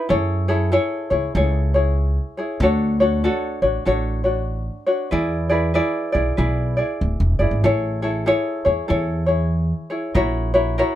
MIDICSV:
0, 0, Header, 1, 3, 480
1, 0, Start_track
1, 0, Tempo, 627615
1, 79, Time_signature, 4, 2, 24, 8
1, 8376, End_track
2, 0, Start_track
2, 0, Title_t, "Ukulele"
2, 0, Program_c, 0, 24
2, 67, Note_on_c, 0, 69, 69
2, 68, Note_on_c, 0, 64, 81
2, 76, Note_on_c, 0, 68, 79
2, 77, Note_on_c, 0, 73, 85
2, 360, Note_off_c, 0, 73, 0
2, 363, Note_off_c, 0, 68, 0
2, 366, Note_off_c, 0, 69, 0
2, 368, Note_off_c, 0, 64, 0
2, 369, Note_on_c, 0, 73, 71
2, 373, Note_on_c, 0, 68, 74
2, 378, Note_on_c, 0, 64, 64
2, 380, Note_on_c, 0, 69, 56
2, 539, Note_off_c, 0, 69, 0
2, 544, Note_off_c, 0, 64, 0
2, 546, Note_off_c, 0, 68, 0
2, 548, Note_off_c, 0, 73, 0
2, 548, Note_on_c, 0, 69, 84
2, 554, Note_on_c, 0, 64, 81
2, 555, Note_on_c, 0, 68, 84
2, 557, Note_on_c, 0, 73, 93
2, 834, Note_off_c, 0, 73, 0
2, 840, Note_off_c, 0, 69, 0
2, 843, Note_on_c, 0, 73, 56
2, 845, Note_off_c, 0, 68, 0
2, 850, Note_off_c, 0, 64, 0
2, 854, Note_on_c, 0, 68, 56
2, 859, Note_on_c, 0, 64, 49
2, 1028, Note_off_c, 0, 73, 0
2, 1029, Note_off_c, 0, 64, 0
2, 1031, Note_off_c, 0, 68, 0
2, 1031, Note_on_c, 0, 69, 62
2, 1039, Note_on_c, 0, 64, 62
2, 1040, Note_on_c, 0, 68, 74
2, 1048, Note_on_c, 0, 73, 73
2, 1323, Note_off_c, 0, 73, 0
2, 1329, Note_off_c, 0, 69, 0
2, 1332, Note_off_c, 0, 64, 0
2, 1333, Note_off_c, 0, 68, 0
2, 1333, Note_on_c, 0, 73, 57
2, 1343, Note_on_c, 0, 68, 56
2, 1346, Note_on_c, 0, 64, 48
2, 1814, Note_off_c, 0, 68, 0
2, 1815, Note_off_c, 0, 73, 0
2, 1815, Note_on_c, 0, 73, 53
2, 1818, Note_off_c, 0, 64, 0
2, 1823, Note_on_c, 0, 68, 52
2, 1831, Note_on_c, 0, 64, 47
2, 1998, Note_off_c, 0, 73, 0
2, 2001, Note_on_c, 0, 69, 80
2, 2002, Note_off_c, 0, 68, 0
2, 2004, Note_off_c, 0, 64, 0
2, 2007, Note_on_c, 0, 62, 79
2, 2010, Note_on_c, 0, 66, 91
2, 2015, Note_on_c, 0, 73, 80
2, 2286, Note_off_c, 0, 73, 0
2, 2293, Note_off_c, 0, 62, 0
2, 2293, Note_off_c, 0, 66, 0
2, 2293, Note_off_c, 0, 69, 0
2, 2295, Note_on_c, 0, 73, 67
2, 2302, Note_on_c, 0, 62, 57
2, 2302, Note_on_c, 0, 66, 63
2, 2310, Note_on_c, 0, 69, 64
2, 2468, Note_off_c, 0, 62, 0
2, 2468, Note_off_c, 0, 69, 0
2, 2474, Note_off_c, 0, 66, 0
2, 2477, Note_on_c, 0, 62, 81
2, 2477, Note_on_c, 0, 69, 83
2, 2478, Note_off_c, 0, 73, 0
2, 2483, Note_on_c, 0, 66, 83
2, 2487, Note_on_c, 0, 73, 96
2, 2760, Note_off_c, 0, 73, 0
2, 2765, Note_off_c, 0, 66, 0
2, 2769, Note_on_c, 0, 73, 57
2, 2771, Note_off_c, 0, 62, 0
2, 2771, Note_off_c, 0, 69, 0
2, 2774, Note_on_c, 0, 66, 49
2, 2784, Note_on_c, 0, 62, 49
2, 2944, Note_off_c, 0, 62, 0
2, 2948, Note_on_c, 0, 69, 64
2, 2949, Note_off_c, 0, 66, 0
2, 2952, Note_off_c, 0, 73, 0
2, 2953, Note_on_c, 0, 62, 66
2, 2958, Note_on_c, 0, 66, 78
2, 2961, Note_on_c, 0, 73, 75
2, 3232, Note_off_c, 0, 73, 0
2, 3241, Note_off_c, 0, 66, 0
2, 3241, Note_on_c, 0, 73, 49
2, 3247, Note_off_c, 0, 69, 0
2, 3249, Note_off_c, 0, 62, 0
2, 3250, Note_on_c, 0, 66, 54
2, 3257, Note_on_c, 0, 62, 52
2, 3711, Note_off_c, 0, 73, 0
2, 3719, Note_off_c, 0, 66, 0
2, 3721, Note_on_c, 0, 73, 57
2, 3728, Note_on_c, 0, 66, 57
2, 3731, Note_off_c, 0, 62, 0
2, 3734, Note_on_c, 0, 62, 44
2, 3908, Note_on_c, 0, 71, 78
2, 3910, Note_off_c, 0, 62, 0
2, 3911, Note_off_c, 0, 73, 0
2, 3913, Note_on_c, 0, 64, 78
2, 3915, Note_off_c, 0, 66, 0
2, 3920, Note_on_c, 0, 68, 91
2, 3920, Note_on_c, 0, 74, 85
2, 4193, Note_off_c, 0, 74, 0
2, 4199, Note_off_c, 0, 68, 0
2, 4202, Note_on_c, 0, 74, 64
2, 4203, Note_off_c, 0, 64, 0
2, 4208, Note_off_c, 0, 71, 0
2, 4208, Note_on_c, 0, 68, 64
2, 4212, Note_on_c, 0, 64, 64
2, 4217, Note_on_c, 0, 71, 63
2, 4381, Note_off_c, 0, 71, 0
2, 4387, Note_off_c, 0, 64, 0
2, 4388, Note_off_c, 0, 68, 0
2, 4390, Note_on_c, 0, 71, 83
2, 4392, Note_off_c, 0, 74, 0
2, 4396, Note_on_c, 0, 64, 89
2, 4397, Note_on_c, 0, 68, 83
2, 4400, Note_on_c, 0, 74, 92
2, 4674, Note_off_c, 0, 74, 0
2, 4683, Note_on_c, 0, 74, 65
2, 4684, Note_off_c, 0, 68, 0
2, 4688, Note_off_c, 0, 64, 0
2, 4689, Note_off_c, 0, 71, 0
2, 4693, Note_on_c, 0, 68, 53
2, 4697, Note_on_c, 0, 64, 47
2, 4869, Note_off_c, 0, 64, 0
2, 4872, Note_off_c, 0, 68, 0
2, 4873, Note_off_c, 0, 74, 0
2, 4873, Note_on_c, 0, 71, 61
2, 4879, Note_on_c, 0, 64, 66
2, 4882, Note_on_c, 0, 68, 70
2, 4888, Note_on_c, 0, 74, 73
2, 5167, Note_off_c, 0, 74, 0
2, 5171, Note_off_c, 0, 71, 0
2, 5174, Note_off_c, 0, 64, 0
2, 5175, Note_off_c, 0, 68, 0
2, 5176, Note_on_c, 0, 74, 51
2, 5189, Note_on_c, 0, 68, 54
2, 5193, Note_on_c, 0, 64, 49
2, 5642, Note_off_c, 0, 74, 0
2, 5651, Note_on_c, 0, 74, 56
2, 5655, Note_off_c, 0, 68, 0
2, 5658, Note_on_c, 0, 68, 50
2, 5665, Note_off_c, 0, 64, 0
2, 5668, Note_on_c, 0, 64, 43
2, 5833, Note_off_c, 0, 64, 0
2, 5838, Note_off_c, 0, 74, 0
2, 5841, Note_off_c, 0, 68, 0
2, 5841, Note_on_c, 0, 69, 78
2, 5842, Note_on_c, 0, 64, 79
2, 5850, Note_on_c, 0, 68, 79
2, 5853, Note_on_c, 0, 73, 90
2, 6127, Note_off_c, 0, 73, 0
2, 6129, Note_off_c, 0, 68, 0
2, 6136, Note_off_c, 0, 64, 0
2, 6136, Note_off_c, 0, 69, 0
2, 6136, Note_on_c, 0, 73, 65
2, 6138, Note_on_c, 0, 68, 63
2, 6144, Note_on_c, 0, 64, 55
2, 6148, Note_on_c, 0, 69, 55
2, 6308, Note_off_c, 0, 69, 0
2, 6314, Note_off_c, 0, 64, 0
2, 6316, Note_off_c, 0, 68, 0
2, 6317, Note_on_c, 0, 69, 85
2, 6320, Note_off_c, 0, 73, 0
2, 6323, Note_on_c, 0, 64, 81
2, 6325, Note_on_c, 0, 68, 77
2, 6329, Note_on_c, 0, 73, 101
2, 6605, Note_off_c, 0, 73, 0
2, 6611, Note_off_c, 0, 69, 0
2, 6613, Note_off_c, 0, 68, 0
2, 6614, Note_on_c, 0, 73, 64
2, 6617, Note_off_c, 0, 64, 0
2, 6622, Note_on_c, 0, 68, 53
2, 6632, Note_on_c, 0, 64, 47
2, 6787, Note_off_c, 0, 64, 0
2, 6789, Note_off_c, 0, 73, 0
2, 6790, Note_off_c, 0, 68, 0
2, 6792, Note_on_c, 0, 69, 72
2, 6796, Note_on_c, 0, 64, 71
2, 6799, Note_on_c, 0, 68, 75
2, 6806, Note_on_c, 0, 73, 69
2, 7076, Note_off_c, 0, 73, 0
2, 7082, Note_off_c, 0, 69, 0
2, 7085, Note_on_c, 0, 73, 54
2, 7089, Note_off_c, 0, 68, 0
2, 7094, Note_off_c, 0, 64, 0
2, 7098, Note_on_c, 0, 68, 46
2, 7102, Note_on_c, 0, 64, 48
2, 7567, Note_off_c, 0, 68, 0
2, 7571, Note_off_c, 0, 73, 0
2, 7571, Note_on_c, 0, 73, 56
2, 7576, Note_on_c, 0, 68, 53
2, 7581, Note_off_c, 0, 64, 0
2, 7584, Note_on_c, 0, 64, 46
2, 7756, Note_off_c, 0, 73, 0
2, 7758, Note_off_c, 0, 64, 0
2, 7759, Note_on_c, 0, 70, 77
2, 7761, Note_off_c, 0, 68, 0
2, 7768, Note_on_c, 0, 64, 81
2, 7769, Note_on_c, 0, 66, 84
2, 7773, Note_on_c, 0, 73, 91
2, 8050, Note_off_c, 0, 73, 0
2, 8054, Note_off_c, 0, 66, 0
2, 8055, Note_off_c, 0, 70, 0
2, 8058, Note_off_c, 0, 64, 0
2, 8059, Note_on_c, 0, 73, 73
2, 8063, Note_on_c, 0, 66, 68
2, 8067, Note_on_c, 0, 64, 61
2, 8071, Note_on_c, 0, 70, 49
2, 8235, Note_off_c, 0, 70, 0
2, 8240, Note_off_c, 0, 64, 0
2, 8243, Note_off_c, 0, 73, 0
2, 8244, Note_on_c, 0, 70, 82
2, 8245, Note_off_c, 0, 66, 0
2, 8249, Note_on_c, 0, 64, 89
2, 8253, Note_on_c, 0, 66, 96
2, 8254, Note_on_c, 0, 73, 93
2, 8376, Note_off_c, 0, 64, 0
2, 8376, Note_off_c, 0, 66, 0
2, 8376, Note_off_c, 0, 70, 0
2, 8376, Note_off_c, 0, 73, 0
2, 8376, End_track
3, 0, Start_track
3, 0, Title_t, "Upright bass"
3, 0, Program_c, 1, 32
3, 77, Note_on_c, 1, 42, 100
3, 581, Note_off_c, 1, 42, 0
3, 848, Note_on_c, 1, 37, 76
3, 969, Note_off_c, 1, 37, 0
3, 1031, Note_on_c, 1, 37, 97
3, 1656, Note_off_c, 1, 37, 0
3, 1989, Note_on_c, 1, 38, 106
3, 2495, Note_off_c, 1, 38, 0
3, 2769, Note_on_c, 1, 33, 79
3, 2890, Note_off_c, 1, 33, 0
3, 2955, Note_on_c, 1, 33, 92
3, 3580, Note_off_c, 1, 33, 0
3, 3917, Note_on_c, 1, 40, 93
3, 4421, Note_off_c, 1, 40, 0
3, 4702, Note_on_c, 1, 35, 80
3, 4819, Note_off_c, 1, 35, 0
3, 4880, Note_on_c, 1, 35, 92
3, 5192, Note_off_c, 1, 35, 0
3, 5363, Note_on_c, 1, 26, 83
3, 5494, Note_off_c, 1, 26, 0
3, 5507, Note_on_c, 1, 28, 92
3, 5639, Note_off_c, 1, 28, 0
3, 5655, Note_on_c, 1, 30, 87
3, 5738, Note_off_c, 1, 30, 0
3, 5745, Note_on_c, 1, 32, 77
3, 5829, Note_off_c, 1, 32, 0
3, 5842, Note_on_c, 1, 33, 107
3, 6346, Note_off_c, 1, 33, 0
3, 6622, Note_on_c, 1, 40, 76
3, 6740, Note_off_c, 1, 40, 0
3, 6807, Note_on_c, 1, 40, 94
3, 7429, Note_off_c, 1, 40, 0
3, 7763, Note_on_c, 1, 34, 107
3, 8267, Note_off_c, 1, 34, 0
3, 8376, End_track
0, 0, End_of_file